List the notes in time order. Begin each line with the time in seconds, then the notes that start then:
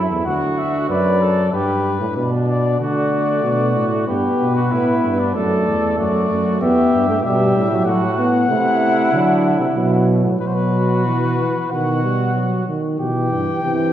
Already playing: E4
0.10 E2
0.25 D2 F#4 F#5
0.58 E5
0.89 F#2 B4 D5
1.21 A4
1.53 G2 G4 B4
2.00 A2
2.16 B2 D4 B4
2.48 D5
2.80 D3 A3 F#4 D5
3.43 B2 F#4
3.76 A2
4.07 G2 B3 G4 B4
4.40 B2
4.55 F#4
4.71 A2 E4
5.04 G2
5.18 D4
5.35 F#2 A3 A4 D5
5.67 E2
5.98 F#2 A3 F#4 D5
6.30 F#2
6.60 E2 B3 G4 E5
6.93 G2
7.09 A3
7.23 B2 G3 G4 E5
7.55 A2
7.72 F#3
7.86 A2 F#3 F#4 F#5
8.18 B3
8.49 C3 A3 E4
9.12 D3 F#3
9.60 C3
9.76 B2 F#3
10.24 A2
10.40 B2 F#3 F#4 B4
10.47 C5
10.55 B4
11.06 E3
11.38 E3
11.70 B2 D#3 F#4 F#5
12.03 G3
12.35 F#3
12.68 D#3
12.99 B2 E3 G4 G5
13.32 G2
13.63 C3 E3 G4